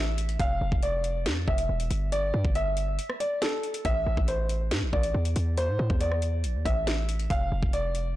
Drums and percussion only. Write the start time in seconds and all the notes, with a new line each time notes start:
0.18 closed hi-hat
0.29 closed hi-hat
0.40 kick, closed hi-hat
0.72 kick
0.83 closed hi-hat
1.04 closed hi-hat
1.26 snare, closed hi-hat
1.48 kick
1.58 closed hi-hat
1.80 closed hi-hat
1.91 closed hi-hat
2.12 closed hi-hat
2.45 kick
2.55 closed hi-hat
2.77 closed hi-hat
2.99 closed hi-hat
3.10 cross-stick
3.20 closed hi-hat
3.42 snare, closed hi-hat
3.63 closed hi-hat
3.74 closed hi-hat
3.85 kick, closed hi-hat
4.17 kick
4.28 closed hi-hat
4.49 closed hi-hat
4.71 snare, closed hi-hat
4.93 kick
5.03 closed hi-hat
5.25 closed hi-hat
5.36 closed hi-hat
5.58 closed hi-hat
5.90 kick
6.01 closed hi-hat
6.12 cross-stick
6.22 closed hi-hat
6.44 closed hi-hat
6.66 kick, closed hi-hat
6.87 snare, closed hi-hat
7.09 closed hi-hat
7.19 closed hi-hat
7.30 kick, closed hi-hat
7.63 kick
7.73 closed hi-hat
7.95 closed hi-hat